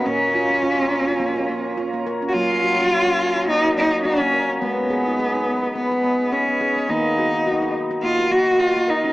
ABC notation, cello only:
X:1
M:4/4
L:1/16
Q:"Swing 16ths" 1/4=105
K:Ebm
V:1 name="Cello"
D12- D2 z3/2 G/2 | F8 E2 E2 D4 | C8 C4 D4 | E6 z2 F2 G2 F2 E2 |]